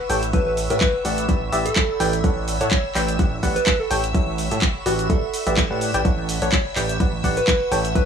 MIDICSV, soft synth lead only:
0, 0, Header, 1, 2, 480
1, 0, Start_track
1, 0, Tempo, 476190
1, 338, Time_signature, 4, 2, 24, 8
1, 8117, End_track
2, 0, Start_track
2, 0, Title_t, "Soft synth lead"
2, 0, Program_c, 0, 80
2, 0, Note_on_c, 0, 71, 97
2, 150, Note_off_c, 0, 71, 0
2, 337, Note_on_c, 0, 71, 89
2, 422, Note_off_c, 0, 71, 0
2, 468, Note_on_c, 0, 71, 80
2, 538, Note_off_c, 0, 71, 0
2, 709, Note_on_c, 0, 71, 97
2, 1110, Note_off_c, 0, 71, 0
2, 1668, Note_on_c, 0, 69, 97
2, 2310, Note_off_c, 0, 69, 0
2, 2629, Note_on_c, 0, 73, 91
2, 2699, Note_off_c, 0, 73, 0
2, 2736, Note_on_c, 0, 73, 78
2, 2821, Note_off_c, 0, 73, 0
2, 3588, Note_on_c, 0, 71, 93
2, 3822, Note_off_c, 0, 71, 0
2, 3828, Note_on_c, 0, 69, 90
2, 3990, Note_off_c, 0, 69, 0
2, 4897, Note_on_c, 0, 66, 95
2, 4982, Note_off_c, 0, 66, 0
2, 5029, Note_on_c, 0, 66, 78
2, 5099, Note_off_c, 0, 66, 0
2, 5137, Note_on_c, 0, 69, 100
2, 5814, Note_off_c, 0, 69, 0
2, 6470, Note_on_c, 0, 73, 90
2, 6539, Note_off_c, 0, 73, 0
2, 6578, Note_on_c, 0, 73, 76
2, 6662, Note_off_c, 0, 73, 0
2, 7430, Note_on_c, 0, 71, 97
2, 7831, Note_off_c, 0, 71, 0
2, 8017, Note_on_c, 0, 71, 91
2, 8102, Note_off_c, 0, 71, 0
2, 8117, End_track
0, 0, End_of_file